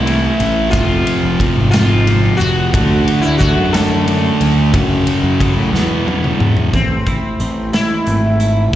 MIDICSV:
0, 0, Header, 1, 6, 480
1, 0, Start_track
1, 0, Tempo, 668151
1, 520, Time_signature, 6, 3, 24, 8
1, 6290, End_track
2, 0, Start_track
2, 0, Title_t, "Sitar"
2, 0, Program_c, 0, 104
2, 0, Note_on_c, 0, 64, 89
2, 487, Note_off_c, 0, 64, 0
2, 505, Note_on_c, 0, 65, 95
2, 1203, Note_off_c, 0, 65, 0
2, 1227, Note_on_c, 0, 65, 95
2, 1698, Note_off_c, 0, 65, 0
2, 1701, Note_on_c, 0, 66, 94
2, 2306, Note_off_c, 0, 66, 0
2, 2309, Note_on_c, 0, 64, 82
2, 2424, Note_off_c, 0, 64, 0
2, 2426, Note_on_c, 0, 66, 84
2, 2678, Note_on_c, 0, 69, 87
2, 2680, Note_off_c, 0, 66, 0
2, 4089, Note_off_c, 0, 69, 0
2, 4848, Note_on_c, 0, 60, 73
2, 5552, Note_off_c, 0, 60, 0
2, 5555, Note_on_c, 0, 64, 81
2, 6280, Note_off_c, 0, 64, 0
2, 6290, End_track
3, 0, Start_track
3, 0, Title_t, "Clean electric guitar"
3, 0, Program_c, 1, 27
3, 4834, Note_on_c, 1, 45, 71
3, 5085, Note_on_c, 1, 64, 69
3, 5320, Note_on_c, 1, 60, 61
3, 5561, Note_on_c, 1, 52, 67
3, 5798, Note_on_c, 1, 57, 61
3, 6028, Note_off_c, 1, 64, 0
3, 6037, Note_on_c, 1, 64, 66
3, 6038, Note_off_c, 1, 45, 0
3, 6279, Note_off_c, 1, 52, 0
3, 6279, Note_off_c, 1, 64, 0
3, 6281, Note_off_c, 1, 60, 0
3, 6290, Note_off_c, 1, 57, 0
3, 6290, End_track
4, 0, Start_track
4, 0, Title_t, "Distorted electric guitar"
4, 0, Program_c, 2, 30
4, 42, Note_on_c, 2, 45, 79
4, 45, Note_on_c, 2, 52, 84
4, 48, Note_on_c, 2, 57, 100
4, 506, Note_off_c, 2, 45, 0
4, 508, Note_off_c, 2, 52, 0
4, 509, Note_off_c, 2, 57, 0
4, 526, Note_on_c, 2, 41, 90
4, 527, Note_on_c, 2, 48, 89
4, 533, Note_on_c, 2, 53, 96
4, 1001, Note_off_c, 2, 41, 0
4, 1004, Note_off_c, 2, 48, 0
4, 1004, Note_off_c, 2, 53, 0
4, 1009, Note_on_c, 2, 41, 80
4, 1012, Note_on_c, 2, 48, 82
4, 1013, Note_on_c, 2, 53, 99
4, 1235, Note_off_c, 2, 41, 0
4, 1238, Note_off_c, 2, 48, 0
4, 1244, Note_off_c, 2, 53, 0
4, 1244, Note_on_c, 2, 41, 95
4, 1247, Note_on_c, 2, 48, 100
4, 1252, Note_on_c, 2, 53, 108
4, 1475, Note_off_c, 2, 41, 0
4, 1478, Note_off_c, 2, 48, 0
4, 1482, Note_off_c, 2, 53, 0
4, 1483, Note_on_c, 2, 41, 88
4, 1487, Note_on_c, 2, 48, 82
4, 1491, Note_on_c, 2, 53, 88
4, 1946, Note_off_c, 2, 41, 0
4, 1948, Note_off_c, 2, 48, 0
4, 1950, Note_off_c, 2, 53, 0
4, 1951, Note_on_c, 2, 50, 95
4, 1955, Note_on_c, 2, 57, 101
4, 1959, Note_on_c, 2, 62, 109
4, 2425, Note_off_c, 2, 50, 0
4, 2428, Note_off_c, 2, 57, 0
4, 2434, Note_off_c, 2, 62, 0
4, 2434, Note_on_c, 2, 50, 84
4, 2437, Note_on_c, 2, 57, 82
4, 2443, Note_on_c, 2, 62, 85
4, 2659, Note_off_c, 2, 50, 0
4, 2666, Note_off_c, 2, 57, 0
4, 2666, Note_off_c, 2, 62, 0
4, 2668, Note_on_c, 2, 50, 97
4, 2674, Note_on_c, 2, 62, 105
4, 2675, Note_on_c, 2, 57, 106
4, 2902, Note_off_c, 2, 50, 0
4, 2907, Note_off_c, 2, 57, 0
4, 2911, Note_on_c, 2, 50, 80
4, 2912, Note_off_c, 2, 62, 0
4, 2915, Note_on_c, 2, 57, 91
4, 2920, Note_on_c, 2, 62, 89
4, 3380, Note_off_c, 2, 50, 0
4, 3382, Note_off_c, 2, 57, 0
4, 3385, Note_off_c, 2, 62, 0
4, 3392, Note_on_c, 2, 42, 92
4, 3396, Note_on_c, 2, 49, 98
4, 3396, Note_on_c, 2, 54, 96
4, 3864, Note_off_c, 2, 42, 0
4, 3870, Note_off_c, 2, 49, 0
4, 3870, Note_off_c, 2, 54, 0
4, 3873, Note_on_c, 2, 42, 77
4, 3879, Note_on_c, 2, 49, 87
4, 3879, Note_on_c, 2, 54, 82
4, 4101, Note_off_c, 2, 42, 0
4, 4104, Note_off_c, 2, 49, 0
4, 4104, Note_off_c, 2, 54, 0
4, 4108, Note_on_c, 2, 47, 101
4, 4111, Note_on_c, 2, 40, 91
4, 4116, Note_on_c, 2, 52, 109
4, 4346, Note_off_c, 2, 40, 0
4, 4346, Note_off_c, 2, 47, 0
4, 4352, Note_off_c, 2, 52, 0
4, 4354, Note_on_c, 2, 47, 84
4, 4355, Note_on_c, 2, 40, 77
4, 4360, Note_on_c, 2, 52, 91
4, 4822, Note_off_c, 2, 47, 0
4, 4823, Note_off_c, 2, 40, 0
4, 4825, Note_off_c, 2, 52, 0
4, 6290, End_track
5, 0, Start_track
5, 0, Title_t, "Picked electric bass"
5, 0, Program_c, 3, 34
5, 0, Note_on_c, 3, 36, 79
5, 201, Note_off_c, 3, 36, 0
5, 289, Note_on_c, 3, 33, 89
5, 527, Note_off_c, 3, 33, 0
5, 527, Note_on_c, 3, 29, 97
5, 731, Note_off_c, 3, 29, 0
5, 885, Note_on_c, 3, 29, 80
5, 1090, Note_off_c, 3, 29, 0
5, 1128, Note_on_c, 3, 32, 83
5, 1642, Note_off_c, 3, 32, 0
5, 1725, Note_on_c, 3, 29, 89
5, 1968, Note_on_c, 3, 38, 96
5, 1979, Note_off_c, 3, 29, 0
5, 2171, Note_off_c, 3, 38, 0
5, 2329, Note_on_c, 3, 38, 88
5, 2532, Note_off_c, 3, 38, 0
5, 2567, Note_on_c, 3, 42, 84
5, 3081, Note_off_c, 3, 42, 0
5, 3166, Note_on_c, 3, 38, 86
5, 3404, Note_off_c, 3, 38, 0
5, 3404, Note_on_c, 3, 42, 93
5, 3609, Note_off_c, 3, 42, 0
5, 3760, Note_on_c, 3, 42, 86
5, 3966, Note_off_c, 3, 42, 0
5, 4000, Note_on_c, 3, 45, 83
5, 4103, Note_off_c, 3, 45, 0
5, 4116, Note_on_c, 3, 40, 105
5, 4532, Note_off_c, 3, 40, 0
5, 4594, Note_on_c, 3, 40, 84
5, 4803, Note_off_c, 3, 40, 0
5, 4836, Note_on_c, 3, 33, 92
5, 5044, Note_off_c, 3, 33, 0
5, 5317, Note_on_c, 3, 33, 77
5, 5526, Note_off_c, 3, 33, 0
5, 5800, Note_on_c, 3, 32, 80
5, 6273, Note_off_c, 3, 32, 0
5, 6290, End_track
6, 0, Start_track
6, 0, Title_t, "Drums"
6, 51, Note_on_c, 9, 51, 75
6, 123, Note_off_c, 9, 51, 0
6, 287, Note_on_c, 9, 51, 73
6, 359, Note_off_c, 9, 51, 0
6, 526, Note_on_c, 9, 36, 107
6, 528, Note_on_c, 9, 51, 97
6, 598, Note_off_c, 9, 36, 0
6, 600, Note_off_c, 9, 51, 0
6, 767, Note_on_c, 9, 51, 71
6, 839, Note_off_c, 9, 51, 0
6, 1005, Note_on_c, 9, 36, 76
6, 1010, Note_on_c, 9, 51, 68
6, 1077, Note_off_c, 9, 36, 0
6, 1082, Note_off_c, 9, 51, 0
6, 1246, Note_on_c, 9, 51, 86
6, 1251, Note_on_c, 9, 38, 95
6, 1317, Note_off_c, 9, 51, 0
6, 1323, Note_off_c, 9, 38, 0
6, 1489, Note_on_c, 9, 51, 69
6, 1561, Note_off_c, 9, 51, 0
6, 1731, Note_on_c, 9, 51, 72
6, 1803, Note_off_c, 9, 51, 0
6, 1967, Note_on_c, 9, 36, 108
6, 1973, Note_on_c, 9, 51, 93
6, 2039, Note_off_c, 9, 36, 0
6, 2045, Note_off_c, 9, 51, 0
6, 2210, Note_on_c, 9, 51, 73
6, 2282, Note_off_c, 9, 51, 0
6, 2447, Note_on_c, 9, 36, 77
6, 2451, Note_on_c, 9, 51, 66
6, 2519, Note_off_c, 9, 36, 0
6, 2523, Note_off_c, 9, 51, 0
6, 2688, Note_on_c, 9, 51, 88
6, 2693, Note_on_c, 9, 38, 100
6, 2760, Note_off_c, 9, 51, 0
6, 2765, Note_off_c, 9, 38, 0
6, 2928, Note_on_c, 9, 51, 70
6, 3000, Note_off_c, 9, 51, 0
6, 3166, Note_on_c, 9, 51, 80
6, 3238, Note_off_c, 9, 51, 0
6, 3404, Note_on_c, 9, 36, 105
6, 3404, Note_on_c, 9, 51, 100
6, 3476, Note_off_c, 9, 36, 0
6, 3476, Note_off_c, 9, 51, 0
6, 3641, Note_on_c, 9, 51, 76
6, 3713, Note_off_c, 9, 51, 0
6, 3883, Note_on_c, 9, 36, 78
6, 3886, Note_on_c, 9, 51, 74
6, 3954, Note_off_c, 9, 36, 0
6, 3958, Note_off_c, 9, 51, 0
6, 4129, Note_on_c, 9, 38, 54
6, 4201, Note_off_c, 9, 38, 0
6, 4367, Note_on_c, 9, 48, 81
6, 4439, Note_off_c, 9, 48, 0
6, 4484, Note_on_c, 9, 47, 73
6, 4556, Note_off_c, 9, 47, 0
6, 4601, Note_on_c, 9, 45, 94
6, 4672, Note_off_c, 9, 45, 0
6, 4717, Note_on_c, 9, 43, 96
6, 4789, Note_off_c, 9, 43, 0
6, 4838, Note_on_c, 9, 36, 94
6, 4840, Note_on_c, 9, 42, 68
6, 4910, Note_off_c, 9, 36, 0
6, 4911, Note_off_c, 9, 42, 0
6, 5076, Note_on_c, 9, 42, 55
6, 5077, Note_on_c, 9, 36, 73
6, 5147, Note_off_c, 9, 42, 0
6, 5149, Note_off_c, 9, 36, 0
6, 5316, Note_on_c, 9, 42, 51
6, 5388, Note_off_c, 9, 42, 0
6, 5556, Note_on_c, 9, 42, 62
6, 5562, Note_on_c, 9, 38, 94
6, 5628, Note_off_c, 9, 42, 0
6, 5634, Note_off_c, 9, 38, 0
6, 5795, Note_on_c, 9, 42, 55
6, 5866, Note_off_c, 9, 42, 0
6, 6034, Note_on_c, 9, 42, 58
6, 6106, Note_off_c, 9, 42, 0
6, 6290, End_track
0, 0, End_of_file